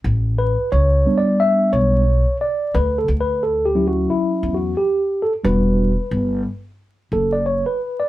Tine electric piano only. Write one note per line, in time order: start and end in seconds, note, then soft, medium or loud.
0.39 0.70 B4 medium
0.72 1.18 C#5 loud
1.06 2.03 G3 soft
1.06 2.03 B3 soft
1.06 2.03 D4 medium
1.18 1.40 D5 medium
1.40 1.71 E5 loud
1.73 2.36 C#5 medium
2.41 2.76 D5 medium
2.75 2.98 B4 medium
2.98 3.08 A4 medium
3.21 3.43 B4 medium
3.43 3.65 A4 medium
3.65 3.86 G4 medium
3.75 4.72 F#3 medium
3.75 4.72 C#4 soft
3.75 4.09 E4 medium
3.88 4.10 F#4 medium
4.10 4.56 E4 medium
4.54 4.75 F#4 medium
4.77 5.23 G4 medium
5.22 5.32 A4 medium
5.43 5.91 G3 soft
5.43 5.91 D4 soft
5.43 5.91 F#4 medium
5.43 6.42 B4 medium
7.13 7.33 A4 medium
7.33 7.45 D5 medium
7.46 7.65 C#5 medium
7.66 8.01 B4 medium
8.00 8.09 D5 medium